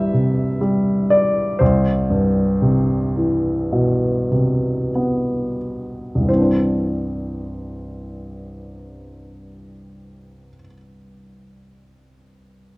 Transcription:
grand piano
Already playing: C2 G2 C3 E3 G3 E5 G5
0.14 C3
0.61 G3
1.10 D5
1.59 C2 C5
2.10 G2
2.62 C3
3.16 E3
3.72 B2
4.31 C3
4.95 B3
6.15 C2
6.21 G2
6.26 E3 C5
6.32 C4
6.38 D4
6.43 C5

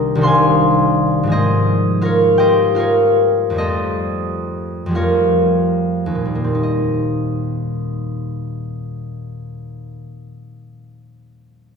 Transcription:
harp
Already playing: C2 D#3 G3 C4 D4 D#4 A#4 D#5 G5 A#5
0.15 C2 D#3 G3
0.21 C4 D4 C5 F5 C6
0.27 G#5
1.23 G#2 F3 G#3
1.30 A#3 C4 G#4 C5 D#5
2.01 F4 A#4 C#5 F5
2.38 G4 C5 D#5 G5
2.75 F4 A#4 F5
2.80 C#5
3.50 F2 F3
3.54 G3 A3 C4
3.58 A4 C5 D#5
4.86 F2 F3
4.90 G3 A3 C4
4.95 F4 A#4 C#5 F5
6.06 D#2
6.15 A#2
6.25 G3
6.35 A#3
6.44 C4
6.55 D#4
6.63 D#5

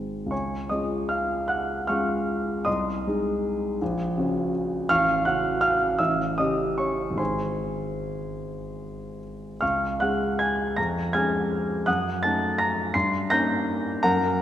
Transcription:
grand piano
Already playing: G#1 G#3 C4 D#4
0.26 C#2
0.31 C#5 G#5 C#6
0.69 G#3 C#4 F4 D#5 D#6
1.09 F5 F6
1.48 F#5 F#6
1.87 G#3 C#4 F4 F5 C#6 F6
2.65 C2 D#5 C6 D#6
3.07 G#3 D#4 G#4
3.82 A#1
4.18 C#3 C#4 F#4
4.89 A1 F5 C#6 F6
5.25 C#3 C#4 F#4 F#5 F#6
5.61 F5 F6
5.99 A1 E5 E6
6.38 C#3 C#4 G4 D#5 D#6
6.78 C#5 C#6
7.11 G#1
7.16 G#3 D#4 G#4 C5 G#5 C6
9.61 C#2 F5 C#6 F6
10.00 G#3 C#4 G#4 F#5 F#6
10.39 G#5 G#6
10.77 F2 A#5 A#6
11.13 G#3 C#4 G#4 G#5 F6 G#6
11.86 F#2 F#5 D#6 F#6
12.23 A3 C#4 D#4 A5 A6
12.58 A#5 A#6
12.94 G2 C6 C7
13.30 A#3 C#4 D#4 A#5 G6 A#6
14.03 F#2 A#4 F#5 A#5

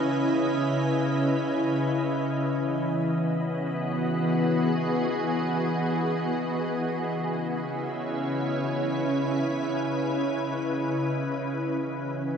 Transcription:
ambient pad
Already playing: C#3 C#4 E4 B4 D#5
2.34 E3
2.74 B3
3.03 F#4
3.58 G#4
6.94 C#3
7.13 E4
7.38 C#4
7.56 B4
11.56 E3
11.87 F#4 D#5
12.14 B3 G#4

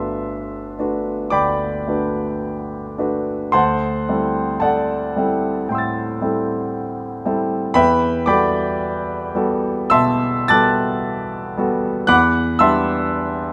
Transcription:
grand piano
Already playing: G1 A3 D4 F#4 B4 E5 A5 C6 E6
0.79 A3 D4 F#4 B4
1.30 D2 D5 G5 B5 D6
1.88 A3 D4 F#4 B4
2.98 A3 D4 F#4 B4
3.52 D2 C5 F#5 A5 C6
4.09 G3 C4 E4 A4
4.60 A4 D5 F#5 A5
5.16 G3 C4 E4 A4
5.69 A2 G5 C6
5.75 E6 A6
6.21 G3 C4 E4 A4
7.25 G3 C4 E4 A4
7.74 E2 B4 E5 G5 B5
8.26 G3 B3 F#4 A4 D5 G5 B5 D6
9.35 G3 B3 F#4 A4
9.90 B2 E5 A5 C6 E6
10.48 G3 B3 F#4 A4 A5 D6 F#6 A6
11.57 G3 B3 F#4 A4
12.07 E2 F#5 B5 D6 F#6
12.59 G3 B3 D4 G4 E5 A5 C6 E6

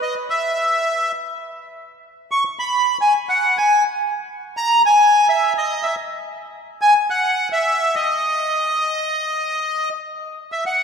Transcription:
bandoneon
0.02 D#5
0.30 E5
2.31 C#6
2.59 B5
3.01 G#5
3.29 F#5
3.58 G#5
4.57 A#5
4.86 G#5
5.29 E5
5.58 D#5
5.83 E5
6.82 G#5
7.10 F#5
7.52 E5
7.95 D#5
10.52 E5
10.66 F#5

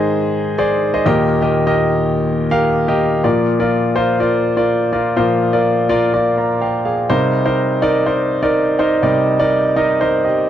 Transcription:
grand piano
Already playing: G#2 D#3 G#4 C5 D#5
0.58 G#4 C5 D5
0.94 G#4 C5 D#5
1.06 D#2 A#2 G4 A#4 D#5
1.42 G4 A#4 D#5
1.67 G4 A#4 D#5
2.51 G4 A#4 F5
2.88 G4 A#4 D#5
3.24 A#2 F3 F4 A#4 D5
3.60 F4 A#4 D5
3.96 F4 A#4 C5
4.20 F4 A#4 D5
4.57 F4 A#4 D5
4.93 F4 A#4 D5
5.16 A#2 F3 F4 A#4 C5
5.53 F4 A#4 D5
5.89 F4 A#4 D5
6.13 F4 A#4 D5
6.38 D5 A#5
6.61 A#4 F5 G5
6.85 G#4 F5
7.09 C3 G3 D#4 A#4 C5
7.45 D#4 A#4 C5
7.82 D#4 A#4 D5
8.06 D#4 A#4 C5
8.43 D#4 A#4 D5
8.79 D#4 A#4 C5
9.02 C3 G3 D#4 A#4 D5
9.39 D#4 A#4 D5
9.76 D#4 A#4 D#5
10.00 D#4 A#4 C5
10.25 G4 D#5

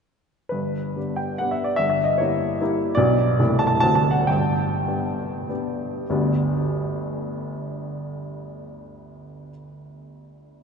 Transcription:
grand piano
0.49 G1 G2 B4
0.96 B3 D4 G4
1.16 G5
1.38 B3 D4 G4 F#5
1.51 E5
1.64 D5
1.76 G1 G2 E5
1.90 E5
2.04 D#5
2.18 A#3 E4 G4 C#5
2.61 A#3 E4 G4
2.95 B1 B2 B3 D4 G4 D5
3.39 C1 C2 A3 E4 G4
3.59 A5
3.67 A5
3.80 D1 D2 C4 D4 F#4 A5
3.95 A5
4.11 F#5
4.27 G1 G2 G5
4.88 B3 D4 G4
5.49 B3 D4 G4
6.10 G1 D2 G3 B3 D4 G4

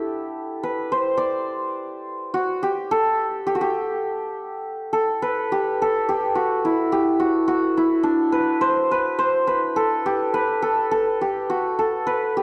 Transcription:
santur
Already playing: D4 E4 G4 A4
0.63 B4
0.92 C5
1.17 D5
2.34 F#4
2.63 G4
2.91 A4
3.47 G4
3.55 F#4
3.61 G4
4.93 A4
5.22 B4
5.52 G4
5.82 A4
6.09 G4
6.35 F#4
6.65 E4
6.92 G4
7.20 F#4
7.48 F#4
7.77 E4
8.03 D4
8.32 B4
8.61 C5
8.91 B4
9.19 C5
9.47 B4
9.76 A4
10.06 G4
10.34 B4
10.62 A4
10.91 A4
11.21 G4
11.50 F#4
11.79 A4
12.07 B4
12.37 G4

